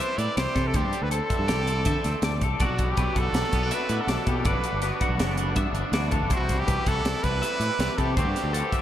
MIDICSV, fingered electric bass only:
0, 0, Header, 1, 2, 480
1, 0, Start_track
1, 0, Key_signature, 1, "major"
1, 0, Tempo, 371058
1, 960, Time_signature, 5, 2, 24, 8
1, 11407, End_track
2, 0, Start_track
2, 0, Title_t, "Fingered electric bass"
2, 0, Program_c, 0, 33
2, 233, Note_on_c, 0, 45, 88
2, 349, Note_off_c, 0, 45, 0
2, 478, Note_on_c, 0, 36, 94
2, 592, Note_off_c, 0, 36, 0
2, 715, Note_on_c, 0, 48, 86
2, 944, Note_off_c, 0, 48, 0
2, 958, Note_on_c, 0, 38, 114
2, 1072, Note_off_c, 0, 38, 0
2, 1078, Note_on_c, 0, 43, 78
2, 1192, Note_off_c, 0, 43, 0
2, 1315, Note_on_c, 0, 38, 76
2, 1544, Note_off_c, 0, 38, 0
2, 1797, Note_on_c, 0, 43, 78
2, 1926, Note_on_c, 0, 36, 94
2, 1946, Note_off_c, 0, 43, 0
2, 2377, Note_off_c, 0, 36, 0
2, 2403, Note_on_c, 0, 50, 89
2, 2516, Note_off_c, 0, 50, 0
2, 2647, Note_on_c, 0, 38, 85
2, 2758, Note_off_c, 0, 38, 0
2, 2872, Note_on_c, 0, 38, 83
2, 3093, Note_off_c, 0, 38, 0
2, 3130, Note_on_c, 0, 36, 85
2, 3343, Note_off_c, 0, 36, 0
2, 3364, Note_on_c, 0, 35, 100
2, 3473, Note_off_c, 0, 35, 0
2, 3481, Note_on_c, 0, 35, 80
2, 3821, Note_off_c, 0, 35, 0
2, 3849, Note_on_c, 0, 35, 81
2, 3960, Note_off_c, 0, 35, 0
2, 4083, Note_on_c, 0, 35, 89
2, 4296, Note_off_c, 0, 35, 0
2, 4304, Note_on_c, 0, 35, 87
2, 4426, Note_off_c, 0, 35, 0
2, 4564, Note_on_c, 0, 35, 90
2, 4789, Note_off_c, 0, 35, 0
2, 5039, Note_on_c, 0, 45, 92
2, 5154, Note_off_c, 0, 45, 0
2, 5269, Note_on_c, 0, 35, 91
2, 5388, Note_off_c, 0, 35, 0
2, 5523, Note_on_c, 0, 47, 82
2, 5749, Note_off_c, 0, 47, 0
2, 5759, Note_on_c, 0, 31, 114
2, 5862, Note_off_c, 0, 31, 0
2, 5870, Note_on_c, 0, 35, 74
2, 5989, Note_off_c, 0, 35, 0
2, 6113, Note_on_c, 0, 31, 83
2, 6343, Note_off_c, 0, 31, 0
2, 6583, Note_on_c, 0, 35, 84
2, 6701, Note_on_c, 0, 30, 93
2, 6721, Note_off_c, 0, 35, 0
2, 7162, Note_off_c, 0, 30, 0
2, 7190, Note_on_c, 0, 43, 83
2, 7308, Note_off_c, 0, 43, 0
2, 7408, Note_on_c, 0, 31, 91
2, 7537, Note_off_c, 0, 31, 0
2, 7656, Note_on_c, 0, 38, 96
2, 8006, Note_off_c, 0, 38, 0
2, 8035, Note_on_c, 0, 30, 82
2, 8148, Note_off_c, 0, 30, 0
2, 8156, Note_on_c, 0, 36, 100
2, 8258, Note_off_c, 0, 36, 0
2, 8266, Note_on_c, 0, 36, 74
2, 8611, Note_off_c, 0, 36, 0
2, 8636, Note_on_c, 0, 36, 84
2, 8751, Note_off_c, 0, 36, 0
2, 8880, Note_on_c, 0, 36, 93
2, 9106, Note_off_c, 0, 36, 0
2, 9116, Note_on_c, 0, 36, 88
2, 9231, Note_off_c, 0, 36, 0
2, 9359, Note_on_c, 0, 36, 86
2, 9585, Note_off_c, 0, 36, 0
2, 9828, Note_on_c, 0, 45, 85
2, 9946, Note_off_c, 0, 45, 0
2, 10077, Note_on_c, 0, 36, 91
2, 10190, Note_off_c, 0, 36, 0
2, 10324, Note_on_c, 0, 48, 91
2, 10547, Note_off_c, 0, 48, 0
2, 10565, Note_on_c, 0, 38, 103
2, 10657, Note_off_c, 0, 38, 0
2, 10664, Note_on_c, 0, 43, 79
2, 10784, Note_off_c, 0, 43, 0
2, 10913, Note_on_c, 0, 38, 77
2, 11140, Note_off_c, 0, 38, 0
2, 11407, End_track
0, 0, End_of_file